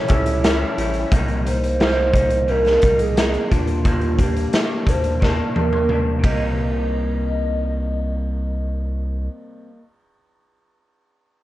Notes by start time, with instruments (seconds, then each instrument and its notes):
Already playing: upright piano G3 C#4 E4 A4, soft synth lead C#5
0.08 sub bass C#2, upright piano G3 C#4 E4 A4, clean electric guitar C#4 E4, kick, closed hi-hat
0.12 clean electric guitar G3
0.26 closed hi-hat
0.42 clean electric guitar E3 G3 C#4 E4, snare, closed hi-hat
0.77 sub bass A1, clean electric guitar G3 C#4 E4, closed hi-hat
0.94 closed hi-hat
1.11 sub bass C2, clean electric guitar C3 G3 A#3 D#4, kick, closed hi-hat
1.28 closed hi-hat
1.45 clean electric guitar G3 A#3 D#4, soft synth lead C5, closed hi-hat
1.63 closed hi-hat
1.79 clean electric guitar C3 G3 A#3 D#4, snare, closed hi-hat
2.13 clean electric guitar G3 A#3 D#4, kick, closed hi-hat
2.30 closed hi-hat
2.48 clean electric guitar C3 G3 A#3 D#4, soft synth lead A#4, closed hi-hat
2.65 snare, closed hi-hat
2.82 sub bass C2, clean electric guitar G3 A#3 D#4, kick, closed hi-hat
2.99 soft synth lead G#4, closed hi-hat
3.16 clean electric guitar C3 A#3 D#4, snare, closed hi-hat
3.34 closed hi-hat
3.50 sub bass D#2, clean electric guitar G3 A#3 D4, soft synth lead F4, kick, closed hi-hat
3.67 closed hi-hat
3.84 clean electric guitar D#3 G3 A#3 D4, kick, closed hi-hat
4.01 closed hi-hat
4.18 clean electric guitar G3 A#3 D4, soft synth lead G4, kick, closed hi-hat
4.37 closed hi-hat
4.52 clean electric guitar D#3 G3 A#3 D4, snare, closed hi-hat
4.86 sub bass D#2, clean electric guitar G3 A#3 D4, soft synth lead C5, kick, closed hi-hat
5.04 closed hi-hat
5.20 clean electric guitar D#3 G3 A#3 D4, soft synth lead A#4, kick, snare
5.54 sub bass D#2, clean electric guitar G3 A#3 D4, high tom
5.73 high tom
5.88 clean electric guitar D#3 G3 A#3 D4, mid tom
6.19 clean electric guitar C3
6.24 sub bass C2, clean electric guitar G3, soft synth lead D#5, kick, ride
6.30 clean electric guitar A#3
6.34 clean electric guitar D#4